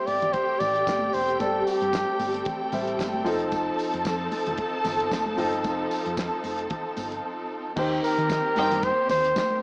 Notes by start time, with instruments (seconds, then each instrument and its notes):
Already playing: grand piano G3 G4 C5 E5, string section A3 C4 G4 G5
0.07 picked electric bass G1, flugelhorn D5, open hi-hat, muted conga
0.22 closed hi-hat, low conga
0.33 flugelhorn C5, kick, closed hi-hat, muted conga
0.59 picked electric bass A1, flugelhorn D5, open hi-hat, tambourine, muted conga, low conga
0.76 closed hi-hat
0.87 picked electric bass G1, kick, snare, clap, closed hi-hat, tambourine, high conga
1.02 high conga
1.13 picked electric bass E1, flugelhorn C5, open hi-hat, tambourine
1.29 closed hi-hat
1.39 picked electric bass G1, grand piano G3 G4 C5 D5, flugelhorn A4, string section A4, kick, closed hi-hat, tambourine, muted conga
1.67 flugelhorn G4, open hi-hat, tambourine
1.82 picked electric bass G2, closed hi-hat
1.93 kick, snare, clap, closed hi-hat, tambourine, high conga
2.19 picked electric bass G1, open hi-hat, tambourine, muted conga
2.34 closed hi-hat
2.45 kick, closed hi-hat, tambourine, muted conga, low conga
2.72 picked electric bass A1, grand piano G3 G4 C5 E5, open hi-hat, tambourine, muted conga, low conga
2.87 closed hi-hat
2.99 picked electric bass G1, kick, snare, clap, closed hi-hat, tambourine, high conga
3.14 high conga
3.24 picked electric bass F1, grand piano F3 C4 D#4 A4, string section F3 D#4 A4 A5, open hi-hat, tambourine
3.40 closed hi-hat
3.52 kick, closed hi-hat, tambourine, muted conga
3.79 open hi-hat, tambourine
3.94 picked electric bass F2, closed hi-hat
4.05 picked electric bass F2, kick, snare, clap, closed hi-hat, tambourine, high conga
4.32 open hi-hat, tambourine, muted conga
4.46 picked electric bass F1, closed hi-hat, low conga
4.58 kick, closed hi-hat, muted conga
4.85 picked electric bass G1, snare, open hi-hat, tambourine, muted conga, low conga
5.00 closed hi-hat
5.12 picked electric bass F1, kick, snare, clap, closed hi-hat, tambourine, high conga
5.26 high conga
5.37 picked electric bass G1, grand piano F3 C4 D#4 A4, open hi-hat, tambourine
5.53 closed hi-hat
5.64 picked electric bass F1, kick, closed hi-hat, tambourine, muted conga
5.91 open hi-hat, tambourine
6.06 picked electric bass F2, closed hi-hat
6.17 kick, snare, clap, closed hi-hat, tambourine, high conga
6.44 picked electric bass F1, open hi-hat, tambourine, muted conga
6.59 closed hi-hat
6.70 kick, closed hi-hat, muted conga, low conga
6.97 picked electric bass G1, open hi-hat, tambourine, muted conga
7.12 closed hi-hat
7.76 picked electric bass D#2, grand piano D#3 D#4 G4 C5, string section D#3 A#3 C4 G4, kick, crash, tambourine, muted conga
8.04 flugelhorn A#4, open hi-hat, tambourine
8.18 picked electric bass D#3, closed hi-hat
8.29 kick, snare, clap, closed hi-hat, tambourine, high conga
8.56 picked electric bass G2, string section D#4 C5 G5, open hi-hat, muted conga
8.71 closed hi-hat, low conga
8.83 flugelhorn C5, kick, closed hi-hat, tambourine, muted conga
9.09 picked electric bass D#2, flugelhorn C5, snare, open hi-hat, tambourine, muted conga, low conga
9.25 closed hi-hat
9.36 kick, snare, clap, closed hi-hat, tambourine, high conga
9.50 high conga